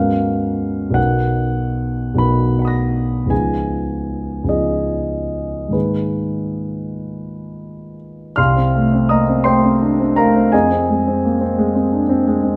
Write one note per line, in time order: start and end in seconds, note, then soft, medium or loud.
0.00 0.91 G#2 soft
0.00 0.90 F#3 soft
0.00 0.91 B3 soft
0.00 0.92 C#4 soft
0.00 0.93 A#4 soft
0.00 0.96 F5 medium
0.90 2.13 B1 soft
0.90 2.14 F#3 soft
0.90 2.14 B3 soft
0.90 2.15 D#4 soft
0.90 2.19 F#5 medium
0.95 2.16 A#4 soft
2.14 3.25 B1 soft
2.14 3.25 F#3 soft
2.14 3.26 B3 soft
2.14 3.26 D#4 soft
2.14 2.60 B5 medium
2.19 3.27 A#4 soft
2.59 3.28 F#5 soft
2.59 3.29 B5 soft
2.65 3.30 D#6 soft
2.65 3.32 A#6 soft
3.26 4.42 C#2 soft
3.26 4.43 F3 soft
3.26 4.44 B3 soft
3.26 4.45 D#4 soft
3.30 4.45 G#4 soft
3.30 4.48 G#5 medium
4.44 5.68 C#2 soft
4.44 5.68 F3 soft
4.44 5.69 B3 soft
4.44 5.70 D#4 soft
4.49 5.71 G#4 soft
4.49 5.74 D#5 soft
5.69 8.30 G#2 soft
5.69 8.31 D#3 soft
5.69 8.31 A#3 soft
5.69 8.32 D#4 soft
5.73 8.33 G#4 soft
5.73 7.96 B4 soft
8.36 10.49 C2 soft
8.36 9.06 F5 soft
8.36 9.07 C6 soft
8.36 9.10 F6 medium
8.56 8.86 C4 soft
8.75 9.03 A3 soft
8.93 9.21 C4 soft
9.09 9.28 A#3 soft
9.09 9.43 D#5 soft
9.09 9.43 A#5 soft
9.09 9.45 D#6 soft
9.29 9.56 C4 soft
9.44 9.74 A3 soft
9.44 10.12 C5 soft
9.44 10.12 G5 soft
9.44 10.16 C6 medium
9.64 9.92 C4 soft
9.82 9.99 D4 soft
10.00 10.28 C4 soft
10.16 10.46 A3 soft
10.16 10.50 A#4 soft
10.16 10.50 F5 soft
10.16 10.52 A#5 medium
10.36 10.53 C4 soft
10.52 12.56 F2 soft
10.52 12.23 G#4 soft
10.52 12.23 D#5 soft
10.52 12.27 G#5 soft
10.71 10.99 C4 soft
10.90 11.17 G#3 soft
11.07 11.34 C4 soft
11.25 11.41 A#3 soft
11.41 11.68 C4 soft
11.58 11.86 G#3 soft
11.75 12.03 C4 soft
11.93 12.10 D4 soft
12.09 12.37 C4 soft
12.27 12.55 G#3 soft
12.43 12.56 C4 soft